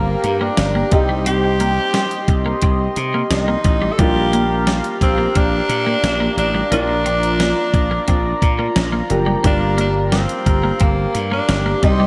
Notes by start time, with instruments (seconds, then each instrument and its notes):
Already playing: slap bass G1, grand piano G3 A#3 D4 F4, tenor saxophone A#3, analog synth pad G4 F5 A#5
0.24 slap bass G2, muted clean electric guitar stroke, closed hi-hat
0.41 clean electric guitar A#3, tenor saxophone D4
0.57 slap bass G1, snare, closed hi-hat
0.75 clean electric guitar A#3
0.91 slap bass C2, grand piano G3 C4 D#4 G4, tenor saxophone D#4, analog synth pad D#5 C6, muted clean electric guitar stroke, kick, closed hi-hat
1.09 clean electric guitar G3
1.26 clean electric guitar C4, tenor saxophone G4, closed hi-hat
1.44 muted clean electric guitar stroke
1.60 clean electric guitar A#3, closed hi-hat
1.94 clean electric guitar G3, snare, closed hi-hat
2.11 closed hi-hat
2.28 slap bass C2, muted clean electric guitar stroke, kick, closed hi-hat
2.46 clean electric guitar A#3
2.62 slap bass C2, clean electric guitar C4, kick, closed hi-hat
2.96 slap bass C3, muted clean electric guitar stroke, closed hi-hat
3.14 clean electric guitar A#3
3.31 slap bass C2, tenor saxophone D#4, snare, closed hi-hat
3.48 clean electric guitar A#3
3.64 slap bass A1, muted clean electric guitar stroke, kick, closed hi-hat
3.82 clean electric guitar G3
3.92 tenor saxophone A4
3.98 slap bass A#1, grand piano G3 A#3 D4 F4, clean electric guitar G3, analog synth pad G4 F5 A#5, tenor saxophone G4, kick, closed hi-hat
4.16 muted clean electric guitar stroke
4.33 clean electric guitar A#3, closed hi-hat
4.67 clean electric guitar G3, snare, closed hi-hat
4.84 closed hi-hat
5.01 slap bass A#1, tenor saxophone C4, muted clean electric guitar stroke, kick, closed hi-hat
5.18 clean electric guitar A#3
5.35 slap bass A#1, clean electric guitar C4, tenor saxophone D4, kick, closed hi-hat
5.69 slap bass A#2, muted clean electric guitar stroke, closed hi-hat
5.87 clean electric guitar A#3
6.03 slap bass A#1, snare, closed hi-hat
6.20 clean electric guitar A#3
6.37 slap bass A1, tenor saxophone D4, muted clean electric guitar stroke, closed hi-hat
6.54 clean electric guitar G3
6.71 slap bass A#1, grand piano F3 A#3 D4 F4, clean electric guitar A#3, tenor saxophone D4, analog synth pad F4 D5, closed hi-hat
6.89 muted clean electric guitar stroke
7.06 clean electric guitar C4, closed hi-hat
7.23 closed hi-hat
7.40 clean electric guitar A#3, snare, closed hi-hat
7.73 slap bass A#1, muted clean electric guitar stroke, kick, closed hi-hat
7.91 clean electric guitar A#3
8.08 slap bass A#1, clean electric guitar C4, kick, closed hi-hat
8.42 slap bass A#2, muted clean electric guitar stroke, kick, closed hi-hat
8.59 clean electric guitar A#3
8.76 slap bass A#1, snare, closed hi-hat
8.92 clean electric guitar A#3
9.10 slap bass F#1, grand piano F3 A#3 D4 G4, muted clean electric guitar stroke, closed hi-hat
9.26 clean electric guitar G3
9.43 slap bass G1, grand piano G3 A#3 D4 F4, clean electric guitar G3, tenor saxophone D4, analog synth pad G4 F5, kick, closed hi-hat
9.61 muted clean electric guitar stroke
9.78 clean electric guitar A#3, tenor saxophone D4, closed hi-hat
10.12 clean electric guitar G3, tenor saxophone C4, snare, closed hi-hat
10.29 closed hi-hat
10.46 slap bass G1, muted clean electric guitar stroke, kick, closed hi-hat
10.63 clean electric guitar A#3
10.80 slap bass G1, tenor saxophone A#3, clean electric guitar C4, kick, closed hi-hat
11.15 slap bass G2, muted clean electric guitar stroke, closed hi-hat
11.32 clean electric guitar A#3, tenor saxophone D4
11.49 slap bass G1, snare, closed hi-hat
11.66 clean electric guitar A#3
11.82 slap bass C2, grand piano G3 C4 D#4 G4, tenor saxophone D#4, analog synth pad D#5 C6, muted clean electric guitar stroke, kick, closed hi-hat
12.00 clean electric guitar G3